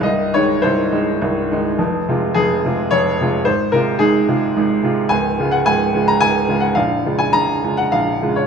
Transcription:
X:1
M:3/4
L:1/16
Q:1/4=107
K:Fm
V:1 name="Grand piano"
e2 d2 c8 | z4 A4 d4 | c2 B2 A8 | [K:Db] a3 g a3 b a3 g |
f3 a b3 g f3 d |]
V:2 name="Grand piano" clef=bass
[C,,,C,,]2 [E,A,E]2 [C,,,C,,]2 [E,A,E]2 [C,,,C,,]2 [E,A,E]2 | [F,,,F,,]2 [C,A,F]2 [F,,,F,,]2 [C,A,F]2 [F,,,F,,]2 [C,A,F]2 | [A,,,A,,]2 [C,A,F]2 [A,,,A,,]2 [C,A,F]2 [A,,,A,,]2 [C,A,F]2 | [K:Db] [D,,,D,,]2 [D,A,F]2 [D,,,D,,]2 [D,A,F]2 [D,,,D,,]2 [D,A,F]2 |
[B,,,,B,,,]2 [D,A,F]2 [B,,,,B,,,]2 [D,A,F]2 [B,,,,B,,,]2 [D,A,F]2 |]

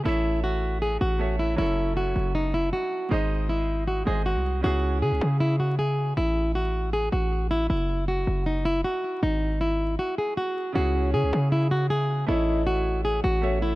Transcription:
X:1
M:4/4
L:1/16
Q:1/4=157
K:C#m
V:1 name="Soft synth lead"
z16 | z16 | z16 | z16 |
z16 | z16 | z16 | z2 c6 z8 |
d4 z8 c2 A2 |]
V:2 name="Grand piano"
[A,Ace]12 [A,Ace]4 | [F,CEA]16 | [G,G^Bd]8- [G,GBd]2 [G,GBd]6 | [C,CEG]16 |
z16 | z16 | z16 | [C,CEG]16 |
[A,EAc]12 [A,Ace]4 |]
V:3 name="Nylon-string guitar"
E4 F4 G2 F4 E2 | E4 F4 D2 E2 F4 | D4 E4 F2 G2 F4 | F4 G4 E2 F2 G4 |
E4 F4 G2 F4 E2 | E4 F4 D2 E2 F4 | D4 E4 F2 G2 F4 | F4 G4 E2 F2 G4 |
E4 F4 G2 F4 E2 |]
V:4 name="808-style bass" clef=bass
A,,,8- A,,,2 A,,,6 | F,,,6 F,,,6 z4 | G,,,8- G,,,2 G,,,3 ^B,,,3 | C,,4 C, C,, C,8- C,2 |
A,,,8- A,,,2 A,,,6 | F,,,6 F,,,6 z4 | G,,,8 z8 | C,,4 C, C,, C,8- C,2 |
A,,,8- A,,,2 A,,,6 |]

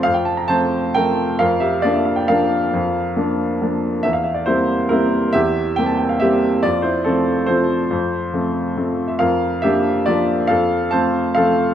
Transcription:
X:1
M:3/4
L:1/16
Q:1/4=138
K:F
V:1 name="Upright piano"
f g a b [ca]4 [Bg]4 | [Bf]2 [Ge]2 d e f g [Bf]4- | [Bf]8- [Bf]2 z2 | e f e d [Ec]4 [EB]4 |
[Ge]4 g a g f [Ge]4 | [Fd]2 [Ec]2 [CA]4 [Fc]4- | [Fc]8- [Fc]3 e | [Bf]4 [Ge]4 [Fd]4 |
[Af]4 [ca]4 [Af]4 |]
V:2 name="Upright piano"
F,,4 [F,A,C]4 [F,A,C]4 | F,,4 [F,B,D]4 [F,B,D]4 | F,,4 [F,B,D]4 [F,B,D]4 | E,,4 [G,B,C]4 [G,B,C]4 |
E,,4 [G,B,C]4 [G,B,C]4 | F,,4 [F,A,]4 [F,A,C]4 | F,,4 [F,A,C]4 [F,A,C]4 | F,,4 [F,B,D]4 [F,B,D]4 |
F,,4 [F,A,C]4 [F,A,C]4 |]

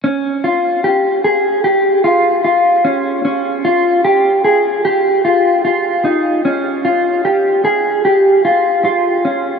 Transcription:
X:1
M:4/4
L:1/8
Q:1/4=75
K:Dblyd
V:1 name="Clean electric guitar"
D F G A G F F D | D F G A G F F E | D F G A G F F D |]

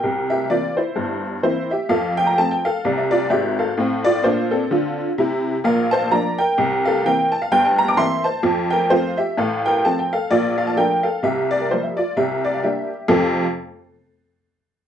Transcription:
X:1
M:4/4
L:1/16
Q:"Swing" 1/4=129
K:F
V:1 name="Honky-tonk piano"
[Bg]2 [Ge]2 [Fd]2 [Ec]4 z2 [Ec]2 [Ge]2 | [Af]2 g b a g [Af]2 d e [Fd]2 [Ge]2 [Af]2- | [Af]2 [Fd]2 [Fc]2 [CA]4 z6 | [Bf]2 [ca]2 [db]2 [Bg]4 [Af]2 [Bg]2 a f |
g a b d' [ec']2 [ca]4 [Bg]2 [Fc]2 [Ge]2 | [Af]2 [Bg]2 a g [Af]2 [Fd]2 f a [Bg]2 [Af]2 | [Ge]2 d B c e [Fd]2 [Ge]2 d f [Ge]4 | [F,,C,A,CFAf]2 z12 z2 |]
V:2 name="Honky-tonk piano" clef=bass
[C,,C,]4 [E,B,C]4 [G,,,G,,]4 [E,B,C]4 | [F,,F,]4 [F,A,C]4 [C,,C,]4 [_A,,,_A,,]4 | [A,,C]4 [B,,D]4 [D,F]4 [C,E]4 | [B,,,B,,]4 [F,B,D]4 [C,,C,]4 [E,B,C]4 |
[G,,,G,,]4 [E,B,C]4 [F,,F,]4 [F,A,C]4 | [A,,,A,,]4 [F,A,C]4 [B,,,B,,]4 [F,A,D]4 | [C,,C,]4 [F,G,B,]4 [C,,C,]4 [G,B,D]4 | z16 |]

